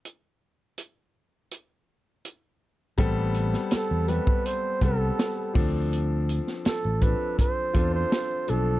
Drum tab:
HH |x---x---x---x---|x-x-x-x-x-x-x-o-|x-x-x-x-x-x-x-x-|
SD |----------------|---oo-------o---|---oo-------o---|
BD |----------------|o------o--o---o-|------o-o-o-----|